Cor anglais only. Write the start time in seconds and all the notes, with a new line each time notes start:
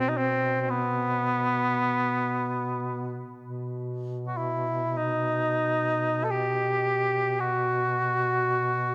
0.00 C4
0.09 D#4
0.17 C4
0.61 C4
0.70 B3
4.27 F#4
4.37 E4
4.97 D#4
6.24 A4
6.31 G4
7.40 F#4